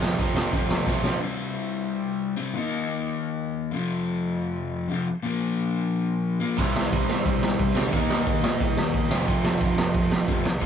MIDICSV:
0, 0, Header, 1, 4, 480
1, 0, Start_track
1, 0, Tempo, 336511
1, 1705, Time_signature, 4, 2, 24, 8
1, 15203, End_track
2, 0, Start_track
2, 0, Title_t, "Overdriven electric guitar"
2, 0, Program_c, 0, 29
2, 0, Note_on_c, 0, 41, 95
2, 0, Note_on_c, 0, 48, 101
2, 0, Note_on_c, 0, 53, 88
2, 242, Note_off_c, 0, 41, 0
2, 250, Note_off_c, 0, 48, 0
2, 259, Note_on_c, 0, 41, 87
2, 261, Note_off_c, 0, 53, 0
2, 267, Note_on_c, 0, 48, 94
2, 279, Note_on_c, 0, 53, 87
2, 491, Note_off_c, 0, 53, 0
2, 501, Note_off_c, 0, 48, 0
2, 508, Note_on_c, 0, 53, 97
2, 511, Note_off_c, 0, 41, 0
2, 518, Note_on_c, 0, 48, 86
2, 528, Note_on_c, 0, 41, 81
2, 737, Note_off_c, 0, 41, 0
2, 746, Note_off_c, 0, 48, 0
2, 752, Note_off_c, 0, 53, 0
2, 754, Note_on_c, 0, 41, 99
2, 763, Note_on_c, 0, 48, 112
2, 769, Note_on_c, 0, 53, 114
2, 1218, Note_off_c, 0, 41, 0
2, 1229, Note_off_c, 0, 48, 0
2, 1235, Note_on_c, 0, 41, 87
2, 1239, Note_off_c, 0, 53, 0
2, 1246, Note_on_c, 0, 48, 93
2, 1256, Note_on_c, 0, 53, 92
2, 1461, Note_off_c, 0, 53, 0
2, 1470, Note_off_c, 0, 48, 0
2, 1478, Note_on_c, 0, 53, 98
2, 1482, Note_off_c, 0, 41, 0
2, 1487, Note_on_c, 0, 48, 84
2, 1499, Note_on_c, 0, 41, 78
2, 1692, Note_off_c, 0, 48, 0
2, 1697, Note_off_c, 0, 53, 0
2, 1708, Note_off_c, 0, 41, 0
2, 1709, Note_on_c, 0, 48, 88
2, 1737, Note_on_c, 0, 55, 102
2, 1759, Note_on_c, 0, 60, 112
2, 3356, Note_off_c, 0, 60, 0
2, 3373, Note_off_c, 0, 48, 0
2, 3373, Note_on_c, 0, 60, 93
2, 3382, Note_off_c, 0, 55, 0
2, 3399, Note_on_c, 0, 55, 83
2, 3426, Note_on_c, 0, 48, 75
2, 3605, Note_off_c, 0, 60, 0
2, 3612, Note_off_c, 0, 48, 0
2, 3618, Note_off_c, 0, 55, 0
2, 3618, Note_on_c, 0, 51, 86
2, 3648, Note_on_c, 0, 58, 92
2, 3669, Note_on_c, 0, 63, 110
2, 5287, Note_off_c, 0, 51, 0
2, 5295, Note_on_c, 0, 41, 98
2, 5302, Note_off_c, 0, 58, 0
2, 5313, Note_off_c, 0, 63, 0
2, 5326, Note_on_c, 0, 48, 94
2, 5350, Note_on_c, 0, 53, 104
2, 6955, Note_off_c, 0, 41, 0
2, 6972, Note_on_c, 0, 41, 89
2, 6982, Note_off_c, 0, 48, 0
2, 6994, Note_off_c, 0, 53, 0
2, 7006, Note_on_c, 0, 48, 97
2, 7030, Note_on_c, 0, 53, 93
2, 7205, Note_off_c, 0, 41, 0
2, 7222, Note_off_c, 0, 48, 0
2, 7233, Note_off_c, 0, 53, 0
2, 7458, Note_on_c, 0, 46, 88
2, 7493, Note_on_c, 0, 53, 101
2, 7513, Note_on_c, 0, 58, 109
2, 9110, Note_off_c, 0, 58, 0
2, 9127, Note_on_c, 0, 58, 91
2, 9129, Note_off_c, 0, 46, 0
2, 9141, Note_off_c, 0, 53, 0
2, 9158, Note_on_c, 0, 53, 76
2, 9182, Note_on_c, 0, 46, 68
2, 9363, Note_off_c, 0, 58, 0
2, 9369, Note_off_c, 0, 46, 0
2, 9375, Note_on_c, 0, 48, 83
2, 9379, Note_off_c, 0, 53, 0
2, 9402, Note_on_c, 0, 55, 102
2, 9427, Note_on_c, 0, 60, 115
2, 11036, Note_off_c, 0, 60, 0
2, 11049, Note_off_c, 0, 48, 0
2, 11053, Note_on_c, 0, 60, 92
2, 11062, Note_off_c, 0, 55, 0
2, 11082, Note_on_c, 0, 55, 89
2, 11104, Note_on_c, 0, 48, 75
2, 11286, Note_off_c, 0, 48, 0
2, 11287, Note_off_c, 0, 60, 0
2, 11291, Note_on_c, 0, 51, 98
2, 11302, Note_off_c, 0, 55, 0
2, 11322, Note_on_c, 0, 58, 107
2, 11344, Note_on_c, 0, 63, 110
2, 12963, Note_on_c, 0, 41, 90
2, 12966, Note_off_c, 0, 51, 0
2, 12981, Note_off_c, 0, 58, 0
2, 12991, Note_on_c, 0, 48, 102
2, 12993, Note_off_c, 0, 63, 0
2, 13016, Note_on_c, 0, 53, 97
2, 14621, Note_off_c, 0, 41, 0
2, 14638, Note_on_c, 0, 41, 82
2, 14654, Note_off_c, 0, 48, 0
2, 14667, Note_off_c, 0, 53, 0
2, 14672, Note_on_c, 0, 48, 92
2, 14695, Note_on_c, 0, 53, 91
2, 14878, Note_off_c, 0, 41, 0
2, 14895, Note_off_c, 0, 48, 0
2, 14906, Note_off_c, 0, 53, 0
2, 15134, Note_on_c, 0, 46, 96
2, 15203, Note_off_c, 0, 46, 0
2, 15203, End_track
3, 0, Start_track
3, 0, Title_t, "Picked electric bass"
3, 0, Program_c, 1, 34
3, 25, Note_on_c, 1, 29, 90
3, 197, Note_off_c, 1, 29, 0
3, 276, Note_on_c, 1, 29, 91
3, 444, Note_off_c, 1, 29, 0
3, 502, Note_on_c, 1, 29, 88
3, 675, Note_off_c, 1, 29, 0
3, 764, Note_on_c, 1, 29, 98
3, 929, Note_off_c, 1, 29, 0
3, 991, Note_on_c, 1, 29, 92
3, 1161, Note_off_c, 1, 29, 0
3, 1236, Note_on_c, 1, 35, 97
3, 1577, Note_off_c, 1, 35, 0
3, 9395, Note_on_c, 1, 36, 112
3, 9838, Note_off_c, 1, 36, 0
3, 9875, Note_on_c, 1, 36, 94
3, 10095, Note_off_c, 1, 36, 0
3, 10122, Note_on_c, 1, 36, 91
3, 10339, Note_off_c, 1, 36, 0
3, 10358, Note_on_c, 1, 36, 107
3, 10577, Note_off_c, 1, 36, 0
3, 10588, Note_on_c, 1, 36, 92
3, 10812, Note_off_c, 1, 36, 0
3, 10833, Note_on_c, 1, 36, 91
3, 11055, Note_off_c, 1, 36, 0
3, 11074, Note_on_c, 1, 38, 93
3, 11295, Note_off_c, 1, 38, 0
3, 11315, Note_on_c, 1, 39, 111
3, 11759, Note_off_c, 1, 39, 0
3, 11794, Note_on_c, 1, 39, 93
3, 12015, Note_off_c, 1, 39, 0
3, 12027, Note_on_c, 1, 46, 93
3, 12252, Note_off_c, 1, 46, 0
3, 12278, Note_on_c, 1, 36, 102
3, 12498, Note_off_c, 1, 36, 0
3, 12515, Note_on_c, 1, 39, 100
3, 12735, Note_off_c, 1, 39, 0
3, 12757, Note_on_c, 1, 39, 103
3, 12977, Note_off_c, 1, 39, 0
3, 12984, Note_on_c, 1, 29, 98
3, 13210, Note_off_c, 1, 29, 0
3, 13234, Note_on_c, 1, 29, 110
3, 13678, Note_off_c, 1, 29, 0
3, 13706, Note_on_c, 1, 29, 95
3, 13931, Note_off_c, 1, 29, 0
3, 13942, Note_on_c, 1, 29, 92
3, 14168, Note_off_c, 1, 29, 0
3, 14187, Note_on_c, 1, 29, 100
3, 14410, Note_off_c, 1, 29, 0
3, 14435, Note_on_c, 1, 29, 103
3, 14655, Note_off_c, 1, 29, 0
3, 14670, Note_on_c, 1, 29, 92
3, 14892, Note_off_c, 1, 29, 0
3, 14909, Note_on_c, 1, 36, 93
3, 15131, Note_off_c, 1, 36, 0
3, 15149, Note_on_c, 1, 34, 107
3, 15203, Note_off_c, 1, 34, 0
3, 15203, End_track
4, 0, Start_track
4, 0, Title_t, "Drums"
4, 33, Note_on_c, 9, 38, 106
4, 176, Note_off_c, 9, 38, 0
4, 272, Note_on_c, 9, 36, 110
4, 272, Note_on_c, 9, 51, 74
4, 414, Note_off_c, 9, 51, 0
4, 415, Note_off_c, 9, 36, 0
4, 518, Note_on_c, 9, 38, 117
4, 660, Note_off_c, 9, 38, 0
4, 752, Note_on_c, 9, 51, 85
4, 755, Note_on_c, 9, 36, 117
4, 895, Note_off_c, 9, 51, 0
4, 897, Note_off_c, 9, 36, 0
4, 1003, Note_on_c, 9, 38, 121
4, 1146, Note_off_c, 9, 38, 0
4, 1233, Note_on_c, 9, 38, 58
4, 1235, Note_on_c, 9, 36, 102
4, 1375, Note_off_c, 9, 38, 0
4, 1378, Note_off_c, 9, 36, 0
4, 1474, Note_on_c, 9, 38, 96
4, 1617, Note_off_c, 9, 38, 0
4, 9391, Note_on_c, 9, 36, 111
4, 9393, Note_on_c, 9, 49, 104
4, 9534, Note_off_c, 9, 36, 0
4, 9535, Note_off_c, 9, 49, 0
4, 9640, Note_on_c, 9, 38, 110
4, 9783, Note_off_c, 9, 38, 0
4, 9874, Note_on_c, 9, 36, 113
4, 9880, Note_on_c, 9, 51, 84
4, 10017, Note_off_c, 9, 36, 0
4, 10022, Note_off_c, 9, 51, 0
4, 10117, Note_on_c, 9, 38, 117
4, 10260, Note_off_c, 9, 38, 0
4, 10352, Note_on_c, 9, 36, 127
4, 10357, Note_on_c, 9, 51, 85
4, 10495, Note_off_c, 9, 36, 0
4, 10500, Note_off_c, 9, 51, 0
4, 10594, Note_on_c, 9, 38, 117
4, 10737, Note_off_c, 9, 38, 0
4, 10831, Note_on_c, 9, 51, 75
4, 10832, Note_on_c, 9, 36, 117
4, 10974, Note_off_c, 9, 36, 0
4, 10974, Note_off_c, 9, 51, 0
4, 11075, Note_on_c, 9, 38, 120
4, 11218, Note_off_c, 9, 38, 0
4, 11311, Note_on_c, 9, 36, 114
4, 11313, Note_on_c, 9, 51, 76
4, 11454, Note_off_c, 9, 36, 0
4, 11456, Note_off_c, 9, 51, 0
4, 11556, Note_on_c, 9, 38, 122
4, 11699, Note_off_c, 9, 38, 0
4, 11795, Note_on_c, 9, 36, 125
4, 11798, Note_on_c, 9, 51, 80
4, 11938, Note_off_c, 9, 36, 0
4, 11941, Note_off_c, 9, 51, 0
4, 12034, Note_on_c, 9, 38, 121
4, 12177, Note_off_c, 9, 38, 0
4, 12274, Note_on_c, 9, 36, 121
4, 12282, Note_on_c, 9, 51, 87
4, 12417, Note_off_c, 9, 36, 0
4, 12425, Note_off_c, 9, 51, 0
4, 12513, Note_on_c, 9, 38, 119
4, 12656, Note_off_c, 9, 38, 0
4, 12751, Note_on_c, 9, 51, 81
4, 12752, Note_on_c, 9, 36, 109
4, 12893, Note_off_c, 9, 51, 0
4, 12895, Note_off_c, 9, 36, 0
4, 12992, Note_on_c, 9, 38, 120
4, 13135, Note_off_c, 9, 38, 0
4, 13232, Note_on_c, 9, 36, 107
4, 13236, Note_on_c, 9, 51, 78
4, 13375, Note_off_c, 9, 36, 0
4, 13378, Note_off_c, 9, 51, 0
4, 13470, Note_on_c, 9, 38, 112
4, 13612, Note_off_c, 9, 38, 0
4, 13702, Note_on_c, 9, 51, 89
4, 13706, Note_on_c, 9, 36, 115
4, 13845, Note_off_c, 9, 51, 0
4, 13849, Note_off_c, 9, 36, 0
4, 13948, Note_on_c, 9, 38, 121
4, 14091, Note_off_c, 9, 38, 0
4, 14178, Note_on_c, 9, 51, 89
4, 14186, Note_on_c, 9, 36, 125
4, 14320, Note_off_c, 9, 51, 0
4, 14328, Note_off_c, 9, 36, 0
4, 14424, Note_on_c, 9, 38, 114
4, 14567, Note_off_c, 9, 38, 0
4, 14666, Note_on_c, 9, 36, 110
4, 14666, Note_on_c, 9, 51, 77
4, 14808, Note_off_c, 9, 36, 0
4, 14808, Note_off_c, 9, 51, 0
4, 14906, Note_on_c, 9, 38, 121
4, 15049, Note_off_c, 9, 38, 0
4, 15138, Note_on_c, 9, 51, 74
4, 15146, Note_on_c, 9, 36, 112
4, 15203, Note_off_c, 9, 36, 0
4, 15203, Note_off_c, 9, 51, 0
4, 15203, End_track
0, 0, End_of_file